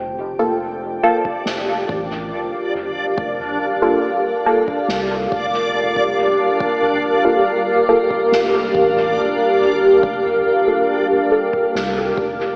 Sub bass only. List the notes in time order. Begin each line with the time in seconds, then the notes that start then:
Already playing: F1
1.46 F1
1.89 A1
2.32 F1
3.18 F1
4.89 C2
5.32 F1
6.18 F1
8.32 F1
8.75 A1
9.18 F1
10.03 F1
11.75 C2
12.18 F1